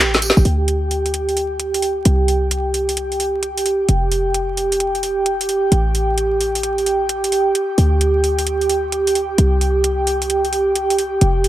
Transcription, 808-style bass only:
0.00 0.31 A1 medium
0.37 0.43 A1 loud
0.45 2.04 D2 medium
2.05 3.87 C2 medium
3.89 5.70 F1 medium
5.72 7.53 A1 medium
7.78 9.37 D2 medium
9.38 11.20 C2 medium
11.21 11.48 F1 medium

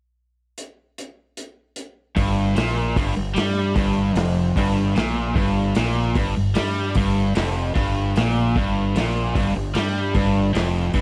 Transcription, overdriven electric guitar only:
2.16 2.56 G2 loud
2.56 2.96 A#2 loud
2.97 3.15 G2 loud
3.16 3.33 G2 medium
3.34 3.75 G3 loud
3.75 4.15 G2 loud
4.15 4.55 F2 loud
4.57 4.96 G2 loud
4.95 5.35 A#2 medium
5.35 5.75 G2 loud
5.76 6.15 A#2 loud
6.16 6.35 G2 loud
6.37 6.52 G2 medium
6.55 6.95 G3 loud
6.96 7.35 G2 loud
7.35 7.74 F2 loud
7.75 8.15 G2 loud
8.17 8.56 A#2 medium
8.57 8.96 G2 loud
8.96 9.35 A#2 loud
9.35 9.55 G2 loud
9.56 9.72 G2 medium
9.75 10.15 G3 loud
10.14 10.53 G2 loud
10.54 10.94 F2 loud
10.94 11.01 G2 loud

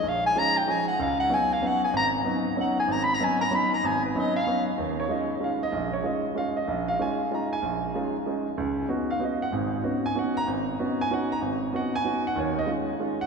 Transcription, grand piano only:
0.03 0.31 A#1 medium
0.36 0.57 F3 medium
0.36 0.57 G#3 medium
0.36 0.57 C#4 medium
0.36 0.57 D#4 medium
0.68 0.88 F3 medium
0.68 0.89 G#3 soft
0.68 0.89 C#4 medium
0.68 0.89 D#4 medium
0.99 1.26 C#2 medium
1.29 1.51 F#3 medium
1.29 1.51 B3 soft
1.29 1.51 C#4 medium
1.29 1.51 D#4 medium
1.62 1.83 F#3 medium
1.62 1.83 B3 medium
1.62 1.83 C#4 medium
1.62 1.83 D#4 medium
1.93 2.20 G#1 medium
2.24 2.46 F#3 medium
2.24 2.46 B3 medium
2.24 2.46 C#4 soft
2.24 2.46 D#4 medium
2.56 2.77 F#3 medium
2.56 2.78 B3 soft
2.56 2.78 C#4 medium
2.56 2.78 D#4 medium
2.88 3.15 G#1 medium
3.20 3.41 F#3 medium
3.20 3.41 B3 medium
3.20 3.41 C#4 medium
3.20 3.41 D#4 medium
3.51 3.72 F#3 medium
3.51 3.72 B3 medium
3.51 3.72 C#4 medium
3.51 3.72 D#4 medium
3.84 4.10 G#1 medium
4.15 4.36 F#3 medium
4.15 4.36 B3 medium
4.15 4.36 C#4 medium
4.15 4.36 D#4 medium
4.47 4.67 F#3 medium
4.47 4.67 B3 medium
4.47 4.67 C#4 medium
4.47 4.68 D#4 medium
4.78 5.05 D#2 medium
5.00 5.10 C#5 medium
5.09 5.30 G#3 medium
5.09 5.30 C#4 soft
5.09 5.30 D#4 medium
5.09 5.30 F4 medium
5.09 5.40 D#5 medium
5.40 5.61 G#3 medium
5.40 5.62 C#4 soft
5.40 5.62 D#4 soft
5.40 5.62 F4 medium
5.40 5.62 F5 medium
5.63 5.91 D#5 loud
5.72 5.99 A#1 medium
5.93 6.04 C#5 medium
6.03 6.25 G#3 medium
6.03 6.25 C#4 medium
6.03 6.25 D#4 soft
6.03 6.25 F4 medium
6.03 6.34 D#5 medium
6.35 6.56 G#3 medium
6.35 6.56 C#4 medium
6.35 6.56 D#4 medium
6.35 6.57 F4 medium
6.35 6.56 F5 loud
6.57 6.85 D#5 medium
6.68 6.95 A#1 medium
6.88 6.99 F5 loud
6.99 7.20 G#3 medium
6.99 7.20 C#4 medium
6.99 7.20 D#4 medium
6.99 7.20 F4 medium
6.99 7.30 G#5 medium
7.31 7.52 G#3 medium
7.31 7.52 C#4 medium
7.31 7.52 D#4 soft
7.31 7.52 F4 medium
7.31 7.52 A#5 medium
7.53 7.81 G#5 medium
7.62 7.89 A#1 medium
7.95 8.15 G#3 medium
7.95 8.15 C#4 soft
7.95 8.15 D#4 soft
7.95 8.16 F4 medium
8.26 8.47 G#3 medium
8.26 8.47 C#4 soft
8.26 8.47 D#4 soft
8.26 8.47 F4 medium
8.58 8.84 C#2 medium
8.89 9.10 B3 medium
8.89 9.10 C#4 soft
8.89 9.10 D#4 medium
8.89 9.10 F#4 medium
9.10 9.21 F5 medium
9.19 9.41 B3 medium
9.19 9.41 C#4 soft
9.19 9.41 D#4 soft
9.19 9.42 F#4 medium
9.19 9.41 D#5 medium
9.42 9.53 F#5 medium
9.52 9.79 G#1 medium
9.52 9.79 G#2 medium
9.84 10.05 B3 medium
9.84 10.05 C#4 medium
9.84 10.05 D#4 medium
9.84 10.05 F#4 medium
10.06 10.16 G#5 loud
10.15 10.36 B3 medium
10.15 10.36 C#4 medium
10.15 10.36 D#4 medium
10.15 10.37 F#4 medium
10.15 10.36 F#5 medium
10.37 10.47 A#5 loud
10.47 10.74 G#1 medium
10.79 11.00 B3 medium
10.79 11.00 C#4 medium
10.79 11.00 D#4 medium
10.79 11.00 F#4 medium
11.01 11.11 G#5 loud
11.10 11.31 B3 medium
11.10 11.31 C#4 medium
11.10 11.32 D#4 medium
11.10 11.31 F#4 medium
11.10 11.31 F#5 medium
11.32 11.38 A#5 loud
11.42 11.69 G#1 medium
11.73 11.94 B3 medium
11.73 11.94 C#4 soft
11.73 11.94 D#4 medium
11.73 11.94 F#4 medium
11.73 11.94 F#5 medium
11.95 12.24 G#5 loud
12.04 12.25 B3 medium
12.04 12.25 C#4 soft
12.04 12.26 D#4 soft
12.04 12.26 F#4 medium
12.27 12.37 F#5 loud
12.36 12.63 D#2 medium
12.36 12.63 D#3 medium
12.36 12.57 C#5 medium
12.59 12.69 D#5 loud
12.66 12.88 G#3 medium
12.66 12.88 C#4 soft
12.66 12.89 D#4 medium
12.66 12.89 F4 medium
13.00 13.21 G#3 medium
13.00 13.21 C#4 medium
13.00 13.21 D#4 soft
13.00 13.21 F4 medium
13.21 13.27 F#5 loud

